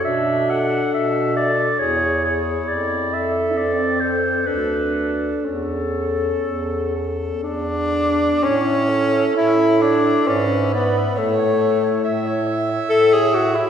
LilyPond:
<<
  \new Staff \with { instrumentName = "Clarinet" } { \time 3/4 \key a \major \tempo 4 = 67 e''8 fis''8 e''8 d''8 cis''8 cis''8 | d''8 e''8 d''8 c''8 b'8 r8 | a'2 r4 | cis''16 e''16 cis''16 e''16 cis''16 e''16 cis''16 e''16 d''16 e''16 d''16 e''16 |
e''16 cis''16 e''16 cis''16 e''16 cis''16 e''16 cis''16 e''16 cis''16 e''16 cis''16 | }
  \new Staff \with { instrumentName = "Tenor saxophone" } { \time 3/4 \key a \major r8 a'4 a'8 gis'8 gis'8 | r8 a'4 a'8 a'8 a'8 | r8 a'4 a'8 d'4 | cis'4 e'8 d'8 cis'8 b8 |
a4. r8 a'16 gis'16 fis'16 e'16 | }
  \new Staff \with { instrumentName = "Alto saxophone" } { \time 3/4 \key a \major d'4. r8 e'4~ | e'4 c'4 d'4 | cis'2~ cis'8 r8 | cis''8 a'4. b'4 |
cis''4 e''2 | }
  \new Staff \with { instrumentName = "Bass clarinet" } { \clef bass \time 3/4 \key a \major b,4 b,4 e,4 | f,4 f,4 d,4 | e,4 e,4 e,4 | a,4 a,4 gis,4 |
a,4 a,4 a,4 | }
>>